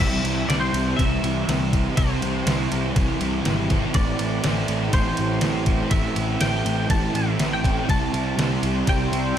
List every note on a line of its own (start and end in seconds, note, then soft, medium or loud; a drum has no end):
0.00 0.19 C2 medium
0.00 0.47 C3 medium
0.00 0.48 E3 loud
0.00 0.26 G3 medium
0.00 0.23 C4 medium
0.00 0.51 E4 loud
0.00 0.50 E5 loud
0.00 kick loud
0.24 0.43 C2 medium
0.24 0.49 G3 medium
0.24 0.51 C4 medium
0.24 ride medium
0.48 0.68 C2 medium
0.48 0.99 C3 medium
0.48 0.99 E3 medium
0.48 0.76 G3 medium
0.48 0.74 C4 medium
0.48 1.01 E4 medium
0.48 0.59 D5 medium
0.48 snare loud
0.48 ride medium
0.60 0.99 C5 loud
0.73 0.93 C2 medium
0.73 1.00 G3 medium
0.73 1.02 C4 medium
0.73 ride medium
0.97 1.18 C2 medium
0.97 1.46 C3 medium
0.97 1.98 E3 medium
0.97 1.26 G3 medium
0.97 1.99 E5 medium
0.97 kick loud
0.97 ride medium
1.01 1.23 C4 medium
1.01 1.23 E4 medium
1.24 1.43 C2 medium
1.24 1.49 G3 medium
1.24 1.50 C4 medium
1.24 1.73 E4 medium
1.24 ride medium
1.47 1.86 C2 medium
1.47 1.95 C3 medium
1.47 1.75 G3 medium
1.47 1.72 C4 medium
1.47 snare loud
1.47 ride medium
1.73 1.98 G3 medium
1.73 2.00 C4 medium
1.73 2.00 E4 medium
1.73 kick medium
1.73 ride medium
1.97 2.17 C2 medium
1.97 2.46 C3 medium
1.97 2.46 E3 medium
1.97 2.25 G3 medium
1.97 2.22 C4 medium
1.97 2.49 E4 loud
1.97 3.66 C5 medium
1.97 kick loud
1.97 ride loud
2.22 2.41 C2 medium
2.22 2.49 G3 medium
2.22 2.50 C4 medium
2.22 ride medium
2.47 2.66 C2 medium
2.47 2.95 C3 medium
2.47 2.96 E3 medium
2.47 2.75 G3 medium
2.47 2.98 E4 medium
2.47 snare loud
2.47 ride loud
2.51 2.72 C4 medium
2.72 2.91 C2 medium
2.72 2.98 G3 medium
2.72 2.99 C4 medium
2.72 ride medium
2.96 3.15 C2 medium
2.96 3.44 C3 medium
2.96 3.96 E3 loud
2.96 3.23 G3 medium
2.96 3.20 C4 medium
2.96 3.21 E4 medium
2.96 kick loud
2.96 ride medium
3.20 3.40 C2 medium
3.20 3.47 G3 medium
3.20 3.48 C4 medium
3.20 3.70 E4 medium
3.20 ride medium
3.45 3.83 G#1 medium
3.45 3.93 C3 medium
3.45 3.73 G3 medium
3.45 3.70 C4 medium
3.45 snare loud
3.45 ride medium
3.70 3.96 G3 medium
3.70 3.97 C4 medium
3.70 3.98 E4 medium
3.70 kick medium
3.70 snare soft
3.70 ride medium
3.94 4.14 A1 medium
3.94 4.44 A2 medium
3.94 4.23 E3 medium
3.94 4.20 A3 medium
3.94 4.46 C4 loud
3.94 4.93 D5 medium
3.94 kick loud
3.94 ride medium
3.98 4.47 E4 loud
4.19 4.38 A1 medium
4.19 4.47 A3 medium
4.19 ride medium
4.23 4.46 E3 medium
4.44 4.63 A1 medium
4.44 4.92 A2 medium
4.44 4.71 E3 medium
4.44 4.68 A3 medium
4.44 4.95 C4 medium
4.44 4.95 E4 medium
4.44 snare loud
4.44 ride medium
4.68 4.88 A1 medium
4.68 4.93 E3 medium
4.68 4.94 A3 medium
4.68 ride medium
4.92 5.13 A1 medium
4.92 5.41 A2 medium
4.92 5.20 E3 medium
4.92 5.16 A3 loud
4.92 5.19 C4 loud
4.92 5.17 E4 medium
4.92 5.95 C5 medium
4.92 kick loud
4.92 ride medium
5.17 5.38 A1 medium
5.17 5.43 E3 medium
5.17 5.43 A3 medium
5.17 5.68 C4 medium
5.17 5.66 E4 medium
5.17 ride medium
5.41 5.81 A1 medium
5.41 5.90 A2 medium
5.41 5.70 E3 medium
5.41 5.66 A3 medium
5.41 snare medium
5.41 ride medium
5.66 5.92 E3 medium
5.66 5.93 A3 medium
5.66 5.92 C4 medium
5.66 5.94 E4 medium
5.66 kick medium
5.66 ride medium
5.91 6.11 A1 medium
5.91 6.40 A2 medium
5.91 6.19 E3 medium
5.91 6.15 A3 medium
5.91 6.41 C4 loud
5.91 6.42 E4 loud
5.91 6.40 E5 loud
5.91 kick loud
5.91 ride medium
6.16 6.36 A1 medium
6.16 6.42 E3 medium
6.16 6.42 A3 medium
6.16 ride medium
6.41 6.61 A1 medium
6.41 6.89 A2 medium
6.41 6.67 E3 medium
6.41 6.64 A3 medium
6.41 6.91 C4 medium
6.41 6.92 E4 medium
6.41 6.90 G5 medium
6.41 snare loud
6.41 ride loud
6.65 6.85 A1 medium
6.65 6.92 E3 soft
6.65 6.92 A3 medium
6.65 ride medium
6.90 7.09 A1 medium
6.90 7.38 A2 medium
6.90 7.17 E3 medium
6.90 7.13 A3 loud
6.90 7.16 C4 medium
6.90 7.14 E4 loud
6.90 7.16 A5 loud
6.90 kick loud
6.90 ride medium
7.14 7.34 A1 medium
7.14 7.40 E3 medium
7.14 7.41 A3 medium
7.14 7.65 C4 medium
7.14 7.63 E4 medium
7.14 7.54 E5 loud
7.14 ride medium
7.39 7.78 A1 medium
7.39 7.88 A2 medium
7.39 7.67 E3 medium
7.39 7.63 A3 medium
7.39 snare medium
7.39 ride medium
7.53 7.89 G5 medium
7.63 7.88 A3 medium
7.63 7.89 C4 medium
7.63 7.90 E4 medium
7.63 kick medium
7.63 ride medium
7.67 7.90 E3 medium
7.88 8.09 C2 loud
7.88 8.37 C3 medium
7.88 8.17 G3 medium
7.88 8.13 C4 medium
7.88 8.40 E4 loud
7.88 9.38 G4 medium
7.88 9.38 D5 medium
7.88 9.38 E5 medium
7.88 8.89 A5 loud
7.88 9.38 C6 medium
7.88 kick loud
7.88 ride medium
8.13 8.33 C2 medium
8.13 8.39 G3 medium
8.13 8.40 C4 medium
8.13 ride medium
8.37 8.57 C2 medium
8.37 8.87 C3 medium
8.37 8.65 G3 medium
8.37 8.62 C4 medium
8.37 8.88 E4 medium
8.37 snare loud
8.37 ride medium
8.63 8.82 C2 medium
8.63 8.89 G3 medium
8.63 8.89 C4 medium
8.63 ride medium
8.87 9.07 C2 medium
8.87 9.34 C3 medium
8.87 9.14 G3 medium
8.87 9.10 C4 loud
8.87 9.10 E4 loud
8.87 9.38 G5 loud
8.87 kick loud
8.87 ride medium
9.11 9.31 C2 medium
9.11 9.37 G3 medium
9.11 9.37 C4 medium
9.11 9.38 E4 medium
9.11 ride medium